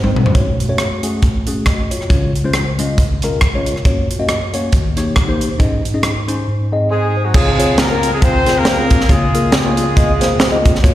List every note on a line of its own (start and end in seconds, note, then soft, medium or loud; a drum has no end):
0.00 0.31 G#2 medium
0.00 0.22 G#3 medium
0.00 0.22 C4 medium
0.00 0.23 D#4 medium
0.00 0.23 C5 medium
0.00 high tom medium
0.16 mid tom medium
0.26 floor tom medium
0.34 2.06 F#2 medium
0.34 0.56 A3 medium
0.34 0.56 C#4 medium
0.34 0.56 F#4 medium
0.34 0.56 C#5 medium
0.34 kick loud
0.34 closed hi-hat medium
0.60 closed hi-hat medium
0.68 0.87 A3 medium
0.68 0.87 C#4 medium
0.68 0.88 F#4 medium
0.68 0.88 C#5 medium
0.78 cross-stick medium
0.78 closed hi-hat medium
1.03 1.26 A3 medium
1.03 1.26 C#4 medium
1.03 1.26 F#4 medium
1.03 1.26 G#4 medium
1.03 closed hi-hat medium
1.22 kick loud
1.22 closed hi-hat medium
1.47 1.63 A3 medium
1.47 1.64 C#4 medium
1.47 1.64 F#4 medium
1.47 1.64 G#4 medium
1.47 closed hi-hat medium
1.66 1.90 F#4 medium
1.66 1.90 D#5 medium
1.66 kick medium
1.66 cross-stick loud
1.66 closed hi-hat medium
1.91 2.09 F4 soft
1.91 2.09 C#5 medium
1.91 closed hi-hat medium
2.01 cross-stick soft
2.09 3.81 C#2 medium
2.09 3.81 C#3 medium
2.09 2.31 G#3 medium
2.09 2.31 C#4 medium
2.09 2.31 F4 medium
2.09 2.31 C#5 medium
2.09 kick medium
2.09 closed hi-hat medium
2.35 closed hi-hat medium
2.44 2.63 G#3 medium
2.44 2.63 C#4 medium
2.44 2.63 F4 medium
2.44 2.63 C5 medium
2.53 cross-stick loud
2.53 closed hi-hat medium
2.79 3.01 G#3 medium
2.79 3.01 C#4 medium
2.79 3.01 F4 medium
2.79 3.02 D#5 medium
2.79 closed hi-hat medium
2.98 kick medium
2.98 closed hi-hat medium
3.22 3.39 G#3 medium
3.22 3.39 C#4 medium
3.22 3.39 F4 medium
3.22 3.39 A#4 medium
3.22 cross-stick soft
3.22 closed hi-hat medium
3.41 kick medium
3.41 cross-stick loud
3.41 closed hi-hat medium
3.55 3.73 G#3 medium
3.55 3.74 C#4 medium
3.55 3.74 F4 medium
3.55 3.74 C#5 medium
3.66 closed hi-hat medium
3.76 cross-stick soft
3.85 4.69 F#2 medium
3.85 4.06 A#3 medium
3.85 4.07 C#4 medium
3.85 4.07 F#4 medium
3.85 4.07 C#5 medium
3.85 kick loud
3.85 closed hi-hat medium
4.11 closed hi-hat medium
4.19 4.37 A#3 medium
4.19 4.38 C#4 medium
4.19 4.38 F#4 medium
4.19 4.38 D#5 medium
4.29 cross-stick loud
4.29 closed hi-hat medium
4.53 4.72 A#3 medium
4.53 4.73 C#4 medium
4.53 4.73 F#4 medium
4.53 4.73 C#5 medium
4.53 closed hi-hat medium
4.72 5.56 D#2 medium
4.72 5.56 D#3 medium
4.72 kick medium
4.72 closed hi-hat medium
4.97 5.13 A#3 medium
4.97 5.13 D#4 medium
4.97 5.13 G4 medium
4.97 5.14 C#5 medium
4.97 cross-stick soft
4.97 closed hi-hat medium
5.16 kick medium
5.16 cross-stick loud
5.16 closed hi-hat medium
5.28 5.47 A#3 medium
5.28 5.48 D#4 medium
5.28 5.48 G4 medium
5.28 5.48 C5 medium
5.41 closed hi-hat medium
5.59 6.43 G#2 medium
5.59 5.81 C#4 medium
5.59 5.81 D#4 medium
5.59 5.81 G#4 medium
5.59 5.81 D#5 medium
5.59 kick medium
5.59 closed hi-hat medium
5.85 closed hi-hat medium
5.94 6.12 C#4 medium
5.94 6.12 D#4 medium
5.94 6.13 G#4 medium
5.94 6.13 D#5 medium
6.03 cross-stick loud
6.03 closed hi-hat medium
6.28 6.47 C#4 medium
6.28 6.47 D#4 medium
6.28 6.47 G#4 medium
6.28 6.47 C5 medium
6.28 closed hi-hat medium
6.47 7.31 G#2 medium
6.72 6.88 C4 medium
6.72 6.88 D#4 medium
6.72 6.88 G#4 medium
6.72 6.89 D#5 medium
6.91 7.23 G#3 medium
6.91 7.32 C4 medium
6.91 7.32 D#4 medium
6.91 7.23 G#4 medium
6.91 7.15 D#5 medium
6.91 7.14 C6 medium
7.16 7.58 C5 soft
7.16 7.58 G#5 medium
7.25 7.34 F#3 medium
7.25 7.34 F#4 medium
7.34 9.05 C#2 medium
7.34 9.05 C#3 soft
7.34 7.78 G#3 medium
7.34 7.49 C4 medium
7.34 8.18 C4 medium
7.34 7.49 F4 medium
7.34 7.78 F4 medium
7.34 7.49 G#4 medium
7.34 7.78 G#4 medium
7.34 7.49 C#5 medium
7.34 kick loud
7.34 crash medium
7.58 7.75 C4 medium
7.58 7.75 F4 medium
7.58 7.75 G#4 medium
7.58 7.75 C#5 medium
7.58 closed hi-hat medium
7.78 8.11 A#3 medium
7.78 8.21 F4 medium
7.78 8.11 A#4 medium
7.78 snare loud
7.78 closed hi-hat medium
7.90 8.10 C4 medium
7.90 8.10 F4 medium
7.90 8.10 G#4 medium
7.90 8.10 A#4 medium
8.03 closed hi-hat medium
8.13 8.21 G#3 medium
8.13 8.21 G#4 medium
8.21 8.36 C4 medium
8.21 8.57 C4 loud
8.21 8.36 F4 medium
8.21 8.55 F4 medium
8.21 8.36 G#4 medium
8.21 9.05 G#4 medium
8.21 8.36 C5 medium
8.21 8.57 C5 loud
8.21 kick loud
8.21 closed hi-hat medium
8.46 8.63 C4 medium
8.46 8.63 F4 medium
8.46 8.63 G#4 medium
8.46 8.63 C5 medium
8.46 snare soft
8.46 closed hi-hat medium
8.57 9.10 A#3 loud
8.57 9.06 F4 medium
8.57 9.10 A#4 loud
8.65 snare loud
8.65 closed hi-hat medium
8.78 8.97 C4 medium
8.78 8.97 F4 medium
8.78 8.97 G#4 medium
8.78 8.97 A#4 medium
8.90 kick medium
8.90 closed hi-hat medium
9.01 snare soft
9.09 10.79 C#2 medium
9.09 10.80 C#3 medium
9.09 9.54 G#3 medium
9.09 9.23 A#3 medium
9.09 9.23 F4 medium
9.09 9.53 F4 medium
9.09 9.23 G#4 medium
9.09 9.54 G#4 loud
9.09 9.24 C#5 medium
9.09 kick loud
9.09 closed hi-hat medium
9.34 9.50 A#3 medium
9.34 9.50 F4 medium
9.34 9.50 G#4 medium
9.34 9.50 A#4 medium
9.34 closed hi-hat medium
9.52 10.62 G#3 medium
9.52 10.62 F4 medium
9.52 10.62 G#4 medium
9.52 snare loud
9.52 closed hi-hat medium
9.65 9.84 A#3 medium
9.65 9.84 F4 medium
9.65 9.84 G#4 medium
9.65 9.85 C#5 medium
9.77 closed hi-hat medium
9.96 10.11 A#3 medium
9.96 10.11 F4 medium
9.96 10.11 G#4 medium
9.96 10.11 D#5 medium
9.96 kick loud
9.96 closed hi-hat medium
10.21 10.37 A#3 medium
10.21 10.37 F4 medium
10.21 10.37 G#4 medium
10.21 10.37 C5 medium
10.21 snare soft
10.21 closed hi-hat medium
10.40 snare loud
10.40 closed hi-hat medium
10.51 10.71 A#3 medium
10.51 10.71 F4 medium
10.51 10.71 G#4 medium
10.51 10.71 D#5 medium
10.65 kick medium
10.65 closed hi-hat medium
10.75 snare soft
10.83 10.94 F#2 medium
10.83 10.94 A#3 medium
10.83 10.94 F4 medium
10.83 10.94 F#4 medium
10.83 10.94 C#5 medium
10.83 kick loud
10.83 closed hi-hat medium